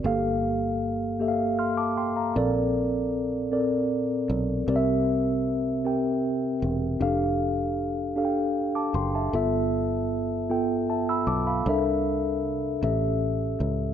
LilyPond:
<<
  \new Staff \with { instrumentName = "Tine electric piano" } { \time 6/8 \key g \dorian \tempo 4. = 52 << { r2 <c''' f'''>16 <a'' d'''>16 <g'' c'''>16 <f'' bes''>16~ | <f'' bes''>16 r2 r8. | r2. | r2 r16 <a'' d'''>16 <g'' c'''>16 <e'' a''>16~ |
<e'' a''>16 r4. r16 <e'' a''>16 <b'' e'''>16 <a'' d'''>16 <f'' b''>16~ | <f'' b''>16 r2 r8. | } \\ { <bes g' a' f''>4 r8 <bes g' a' e'' f''>4 r8 | <c' a' bes' d''>4 r8 <c' a' bes' d''>4 r8 | <c' g' bes' d'' e''>4 r8 <c' g' bes' g''>4 r8 | <d' g' a' f''>4 r8 <d' g' a' f'' g''>4 r8 |
<b f' a' e''>4 r8 <b f' a' g''>4 r8 | <d' a' bes' e''>4 r8 <cis' g' a' e''>4 r8 | } >> }
  \new Staff \with { instrumentName = "Tine electric piano" } { \clef bass \time 6/8 \key g \dorian g,4. r4. | bes,4. r4. | c4. r4. | r2. |
g,4. r4. | c4. a,4. | }
  \new Staff \with { instrumentName = "Fingered electric bass" } { \clef bass \time 6/8 \key g \dorian g,,2~ g,,8 a,,8 | bes,,2~ bes,,8 b,,8 | c,2~ c,8 e,,8 | f,,2~ f,,8 ges,,8 |
g,,2~ g,,8 b,,8 | c,4. a,,4 cis,8 | }
>>